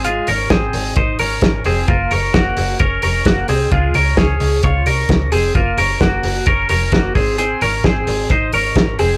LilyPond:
<<
  \new Staff \with { instrumentName = "Clean electric guitar" } { \time 4/4 \key aes \mixolydian \tempo 4 = 131 <aes f'>8 <des' bes'>8 <c' aes'>4 <ees' c''>8 <des' bes'>4 <c' aes'>8 | <bes f'>8 <des' bes'>8 <bes ges'>4 <des' bes'>8 <des' bes'>8 <bes ges'>8 <c' aes'>8 | <aes f'>8 <des' bes'>8 <des' aes'>4 <f' des''>8 <des' bes'>4 <c' aes'>8 | <bes f'>8 <des' bes'>8 <bes ges'>4 <des' bes'>8 <des' bes'>8 <bes ges'>8 <c' aes'>8 |
<c' aes'>8 <des' bes'>8 <c' aes'>4 <ees' c''>8 <des' bes'>4 <c' aes'>8 | }
  \new Staff \with { instrumentName = "FM bass" } { \clef bass \time 4/4 \key aes \mixolydian aes,,8 aes,,8 aes,,8 aes,,8 aes,,8 aes,,8 aes,,8 f,,8 | ges,,8 ges,,8 ges,,8 ges,,8 ges,,8 f,,8 ges,,8 c,8 | des,8 des,8 des,8 des,8 des,8 c,8 des,8 f,,8 | ges,,8 ges,,8 ges,,8 ges,,8 ges,,8 f,,8 ges,,8 aes,,8~ |
aes,,8 aes,,8 aes,,8 aes,,8 aes,,8 aes,,8 aes,,8 f,,8 | }
  \new DrumStaff \with { instrumentName = "Drums" } \drummode { \time 4/4 hh8 hho8 <hh bd sn>8 hho8 <hh bd>8 hho8 <hh bd sn>8 hho8 | <hh bd>8 hho8 <hh bd sn>8 hho8 <hh bd>8 hho8 <hh bd sn>8 hho8 | <hh bd>8 hho8 <hh bd sn>8 hho8 <hh bd>8 hho8 <hh bd sn>8 hho8 | <hh bd>8 hho8 <hh bd sn>8 hho8 <hh bd>8 hho8 <hh bd sn>8 <hho bd>8 |
hh8 hho8 <hh bd sn>8 hho8 <hh bd>8 hho8 <hh bd sn>8 hho8 | }
>>